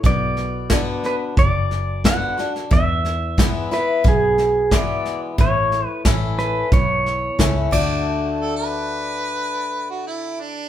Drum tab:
RD |----------------|----------------|--------------x-|----------------|
HH |----p-------p---|----p-------p---|----p-------p---|----------------|
SD |o-o-o-o-o-o-o-oo|o-o-o-o-o-o-o-o-|o-o-o-o-o-o-o---|----------------|
BD |o---o---o---o---|o---o---o---o---|o---o---o---o-o-|----------------|